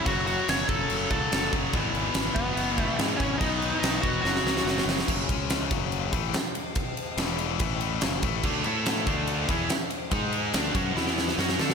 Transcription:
0.05 F#1 F#2 C#3 F#3 F#4, kick, crash
0.27 F#4, crash
0.48 F#1 C#5, snare, crash
0.68 F#1 A4, kick, crash
0.90 F#1, crash
1.10 C#2 F#2 C#3 F#3 A4, kick, crash
1.32 F#1 F#2 C#3 F#3, snare, crash
1.52 F#1 F#2 C#3 F#3, kick, crash
1.73 G#1 E2 B2 E3, kick, crash
1.94 G#1, crash
2.14 G#1, snare, crash
2.35 F#1 B3, kick, crash
2.57 F#1, crash
2.78 E2 B2 E3 A3, kick, crash
2.99 E2 G#2 B2 E3, snare, crash
3.17 G#1 E3 C#4, kick, crash
3.21 E2 B2
3.38 B1 B2 D#4, kick, crash
3.42 F#3 B3
3.62 crash
3.80 B1 D#4, crash
3.84 snare
4.02 E1 F#4, kick, crash
4.22 F#1 F#2 C#3 F#4, snare
4.26 F#3
4.36 snare
4.44 C#2, snare
4.57 snare
4.65 F#1, snare
4.78 snare
4.86 F#1, snare
4.99 snare
5.07 F#1 F#2 C#3 F#3, kick, crash
5.29 C#2 C#3 G#3 C#4, kick, ride
5.50 snare, ride
5.71 F#1 F#2 C#3 F#3, kick, ride
5.92 ride
6.13 A1 A2 E3 A3, kick, ride
6.34 snare, ride
6.55 ride
6.75 kick, ride
6.97 ride
7.17 E1 E2 B2 E3, snare, ride
7.39 ride
7.59 A1 A2 E3 A3, kick, ride
7.81 ride
8.01 F#1 F#2 C#3 F#3, snare, ride
8.22 A1 A2 E3 A3, kick, ride
8.43 D2 D3 A3 D4, kick, crash
8.64 A2 A3 E4 A4, ride
8.86 snare, ride
9.06 D2 D3 A3 D4, kick, ride
9.27 ride
9.49 E2 E3 B3 E4, kick, ride
9.69 snare, ride
9.90 ride
10.11 G#2 G#3 D#4 G#4, kick, ride
10.32 ride
10.53 D2 D3 A3 D4, snare, ride
10.75 F#2 F#3 C#4 F#4, kick, ride
10.96 E2 E3 B3 E4, snare
11.07 snare
11.18 snare
11.28 snare
11.38 F#2 F#3 C#4 F#4, snare
11.49 snare
11.59 D3 D4 A4 D5, snare
11.70 snare

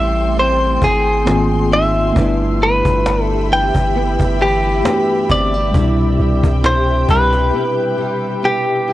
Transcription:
Already playing: A1 G3 A3 C4 E4 E5 G5 C6
0.36 C4 C5, cajon slap
0.82 G#1 G#4, cajon bass
1.25 G#2 D#3 A#3 C4 F4, cajon slap
1.71 D#4 E5
2.13 G1 G2 A3 B3 D4 G4 E5 B5, cajon bass
2.17 D4 E4
2.61 B3 B4, cajon slap
2.85 G1, cajon bass
3.06 D4, cajon slap
3.23 A4
3.51 E3 G5
3.75 G1, cajon bass
3.95 B3, cajon slap
4.20 G1, cajon bass
4.40 E3 G4, cajon slap
4.84 A3 B3 D4 F#4, cajon slap
4.93 G4
5.30 G1 C4 D5, cajon bass
5.54 D4
5.71 C2 B2 C3 G3 E4 G4 G5, cajon bass
5.76 D4 E4
6.19 C2, cajon slap
6.43 C2, cajon bass
6.64 E4 C5, cajon slap
7.08 C2 G3 B4, cajon bass
7.33 cajon slap
7.53 B3
7.98 G3
8.43 B3 G4
8.88 E4

